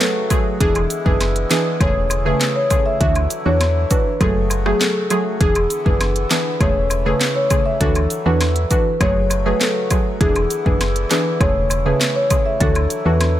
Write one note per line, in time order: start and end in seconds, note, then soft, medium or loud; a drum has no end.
0.00 0.59 C#3 medium
0.00 0.27 F#3 medium
0.00 0.58 F#3 medium
0.00 0.27 A3 medium
0.00 0.59 A3 medium
0.00 0.59 F#4 medium
0.00 0.27 G#4 medium
0.00 0.43 A4 medium
0.00 snare loud
0.00 clap medium
0.00 closed hi-hat medium
0.30 0.58 F#3 medium
0.30 0.58 A3 medium
0.30 0.58 G#4 medium
0.30 kick medium
0.30 closed hi-hat medium
0.30 cabasa medium
0.30 high woodblock medium
0.60 0.87 E1 loud
0.60 1.79 D3 medium
0.60 0.80 E3 loud
0.60 4.17 E3 medium
0.60 1.79 G#3 medium
0.60 1.79 B3 medium
0.60 0.80 D4 medium
0.60 4.17 E4 medium
0.60 0.87 G#4 loud
0.60 0.80 G#4 loud
0.60 kick loud
0.60 closed hi-hat medium
0.75 closed hi-hat soft
0.75 high woodblock medium
0.90 closed hi-hat medium
0.90 cabasa medium
1.05 1.45 F#1 medium
1.05 1.25 E3 medium
1.05 1.25 D4 medium
1.05 1.25 G#4 medium
1.05 1.32 B4 medium
1.05 kick loud
1.21 snare medium
1.21 closed hi-hat medium
1.21 high woodblock medium
1.36 closed hi-hat medium
1.50 1.70 E3 medium
1.50 1.70 D4 medium
1.50 1.70 G#4 medium
1.50 1.77 B4 medium
1.50 snare loud
1.50 clap medium
1.50 closed hi-hat medium
1.50 cabasa medium
1.80 2.33 E1 loud
1.80 2.22 C#3 loud
1.80 2.99 C#3 medium
1.80 2.99 A3 medium
1.80 2.22 A3 medium
1.80 2.99 G#4 medium
1.80 2.22 G#4 loud
1.80 1.94 C#5 medium
1.80 kick medium
1.80 closed hi-hat medium
1.80 high woodblock medium
2.10 closed hi-hat medium
2.10 cabasa medium
2.10 high woodblock medium
2.25 2.67 C#3 medium
2.25 2.67 A3 medium
2.25 2.67 G#4 medium
2.25 2.39 B4 medium
2.41 snare loud
2.41 clap loud
2.41 closed hi-hat medium
2.56 2.69 C#5 medium
2.70 2.98 C#3 medium
2.70 2.98 A3 medium
2.70 2.98 G#4 medium
2.70 kick medium
2.70 closed hi-hat medium
2.70 cabasa medium
2.70 high woodblock medium
2.86 2.99 E5 medium
3.00 3.27 D2 loud
3.00 4.19 D3 medium
3.00 3.20 E3 medium
3.00 5.38 F#3 medium
3.00 5.38 A3 medium
3.00 3.20 D4 medium
3.00 3.20 F#4 loud
3.00 3.27 E5 loud
3.00 kick loud
3.00 closed hi-hat medium
3.15 closed hi-hat soft
3.15 high woodblock medium
3.30 closed hi-hat medium
3.30 cabasa medium
3.45 3.85 E2 medium
3.45 3.65 E3 medium
3.45 3.65 D4 medium
3.45 3.65 F#4 medium
3.45 3.72 C#5 medium
3.61 snare medium
3.61 closed hi-hat medium
3.61 high woodblock medium
3.90 4.10 E3 medium
3.90 4.10 D4 medium
3.90 4.10 F#4 medium
3.90 4.17 B4 medium
3.90 kick loud
3.90 closed hi-hat medium
3.90 cabasa medium
4.20 4.74 F#1 loud
4.20 5.40 C#3 medium
4.20 4.62 F#3 medium
4.20 4.62 A3 medium
4.20 5.39 F#4 medium
4.20 4.62 G#4 loud
4.20 4.34 A4 medium
4.20 kick medium
4.20 closed hi-hat medium
4.20 high woodblock medium
4.50 closed hi-hat medium
4.50 cabasa medium
4.50 high woodblock medium
4.65 5.07 F#3 medium
4.65 5.07 A3 medium
4.65 4.79 G#4 medium
4.65 5.07 G#4 medium
4.65 cross-stick loud
4.81 5.23 A4 medium
4.81 snare loud
4.81 clap medium
4.81 closed hi-hat medium
5.10 5.38 F#3 medium
5.10 5.38 A3 medium
5.10 5.38 G#4 medium
5.10 closed hi-hat medium
5.10 cabasa medium
5.10 high woodblock medium
5.40 5.67 E1 loud
5.40 6.60 D3 medium
5.40 5.60 E3 medium
5.40 6.59 E3 medium
5.40 6.60 B3 medium
5.40 5.60 D4 medium
5.40 8.97 E4 medium
5.40 5.67 G#4 loud
5.40 5.60 G#4 loud
5.40 kick loud
5.40 closed hi-hat medium
5.55 closed hi-hat soft
5.55 high woodblock medium
5.70 closed hi-hat medium
5.70 cabasa medium
5.85 6.26 F#1 medium
5.85 6.05 E3 medium
5.85 6.05 D4 medium
5.85 6.05 G#4 medium
5.85 6.12 B4 medium
5.85 kick loud
6.01 snare medium
6.01 closed hi-hat medium
6.01 high woodblock medium
6.16 closed hi-hat medium
6.31 6.50 E3 medium
6.31 6.50 D4 medium
6.31 6.50 G#4 medium
6.31 6.57 B4 medium
6.31 snare loud
6.31 clap medium
6.31 closed hi-hat medium
6.31 cabasa medium
6.60 7.13 E1 loud
6.60 7.02 C#3 medium
6.60 7.79 C#3 medium
6.60 8.98 E3 medium
6.60 10.17 A3 medium
6.60 7.02 A3 medium
6.60 7.02 G#4 loud
6.60 6.74 C#5 medium
6.60 kick medium
6.60 closed hi-hat medium
6.60 high woodblock medium
6.90 closed hi-hat medium
6.90 cabasa medium
6.90 high woodblock medium
7.06 7.47 C#3 medium
7.06 7.47 A3 medium
7.06 7.47 G#4 medium
7.06 7.19 B4 medium
7.21 snare loud
7.21 clap loud
7.21 closed hi-hat medium
7.36 7.49 C#5 medium
7.50 7.78 C#3 medium
7.50 7.78 A3 medium
7.50 7.78 G#4 medium
7.50 kick medium
7.50 closed hi-hat medium
7.50 cabasa medium
7.50 high woodblock medium
7.66 7.79 E5 medium
7.80 8.07 D2 loud
7.80 8.99 D3 medium
7.80 8.00 E3 medium
7.80 10.18 F#3 medium
7.80 8.00 D4 medium
7.80 8.00 F#4 loud
7.80 8.07 A4 loud
7.80 kick loud
7.80 closed hi-hat medium
7.95 closed hi-hat soft
7.95 high woodblock medium
8.10 closed hi-hat medium
8.10 cabasa medium
8.26 8.65 E2 medium
8.26 8.45 E3 medium
8.26 8.45 D4 medium
8.26 8.45 F#4 medium
8.26 8.52 B4 medium
8.41 snare medium
8.41 closed hi-hat medium
8.41 high woodblock medium
8.56 closed hi-hat medium
8.70 8.90 E3 medium
8.70 8.90 D4 medium
8.70 8.90 F#4 medium
8.70 8.97 B4 medium
8.70 kick medium
8.70 closed hi-hat medium
8.70 cabasa medium
9.00 9.54 F#1 loud
9.00 10.20 C#3 medium
9.00 9.42 F#3 loud
9.00 9.42 A3 medium
9.00 10.20 F#4 medium
9.00 9.42 G#4 loud
9.00 9.14 C#5 medium
9.00 kick medium
9.00 closed hi-hat medium
9.00 high woodblock medium
9.30 closed hi-hat medium
9.30 cabasa medium
9.30 high woodblock medium
9.46 9.87 F#3 medium
9.46 9.87 A3 medium
9.46 9.87 G#4 medium
9.46 9.59 B4 medium
9.61 10.03 A4 medium
9.61 snare loud
9.61 clap loud
9.61 closed hi-hat medium
9.90 10.18 F#3 medium
9.90 10.18 A3 medium
9.90 10.18 G#4 medium
9.90 kick medium
9.90 closed hi-hat medium
9.90 cabasa medium
9.90 high woodblock medium
10.20 10.47 E1 loud
10.20 11.40 D3 medium
10.20 10.40 E3 loud
10.20 11.39 E3 medium
10.20 11.40 B3 medium
10.20 10.40 D4 medium
10.20 13.40 E4 medium
10.20 10.47 G#4 loud
10.20 10.40 G#4 loud
10.20 kick loud
10.20 closed hi-hat medium
10.36 closed hi-hat soft
10.36 high woodblock medium
10.50 closed hi-hat medium
10.50 cabasa medium
10.65 11.06 F#1 medium
10.65 10.85 E3 medium
10.65 10.85 D4 medium
10.65 10.85 G#4 medium
10.65 10.92 B4 medium
10.65 kick loud
10.81 snare medium
10.81 closed hi-hat medium
10.81 high woodblock medium
10.96 closed hi-hat medium
11.11 11.30 E3 medium
11.11 11.30 D4 medium
11.11 11.30 G#4 medium
11.11 11.37 B4 medium
11.11 snare loud
11.11 clap medium
11.11 closed hi-hat medium
11.11 cabasa medium
11.40 11.94 E1 loud
11.40 11.82 C#3 medium
11.40 12.59 C#3 medium
11.40 13.40 E3 medium
11.40 13.40 A3 medium
11.40 11.82 A3 medium
11.40 11.82 G#4 loud
11.40 11.54 C#5 medium
11.40 kick medium
11.40 closed hi-hat medium
11.40 high woodblock medium
11.70 closed hi-hat medium
11.70 cabasa medium
11.70 high woodblock medium
11.85 12.27 C#3 medium
11.85 12.27 A3 medium
11.85 12.27 G#4 medium
11.85 11.99 B4 medium
12.01 snare loud
12.01 clap medium
12.01 closed hi-hat medium
12.16 12.29 C#5 medium
12.30 12.58 C#3 medium
12.30 12.58 A3 medium
12.30 12.58 G#4 medium
12.30 kick medium
12.30 closed hi-hat medium
12.30 cabasa medium
12.30 high woodblock medium
12.46 12.59 E5 medium
12.60 12.87 D2 loud
12.60 13.40 D3 medium
12.60 12.80 E3 loud
12.60 13.40 F#3 medium
12.60 12.80 D4 medium
12.60 12.80 F#4 loud
12.60 12.87 A4 loud
12.60 kick loud
12.60 closed hi-hat medium
12.75 closed hi-hat soft
12.75 high woodblock medium
12.90 closed hi-hat medium
12.90 cabasa medium
13.05 13.40 E2 medium
13.05 13.25 E3 medium
13.05 13.25 D4 medium
13.05 13.25 F#4 medium
13.05 13.32 B4 medium
13.21 snare medium
13.21 closed hi-hat medium
13.21 high woodblock medium